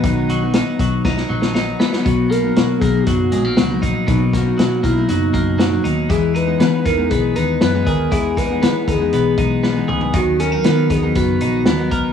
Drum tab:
HH |x-x-x-x---------|x-x-x-x-x-x-x-x-|x-x-x-x-x-x-x-x-|x-x-x-x-x-x-x-x-|
SD |----o---oo-oo-oo|----o-------o---|--o-o-------o---|----o-------o---|
T2 |----------------|----------------|----------------|----------------|
FT |----------------|----------------|----------------|----------------|
BD |o-----o-o-------|o-----o-o-----o-|o-o---o---o-----|o-----o-o-----o-|

HH |x-x-x-x-x-x-----|x-x-x-x-x-x-x-x-|
SD |--o-o-------o---|----o-------o---|
T2 |--------------o-|----------------|
FT |---------------o|----------------|
BD |o-o---o---o-----|o-----o-o-----o-|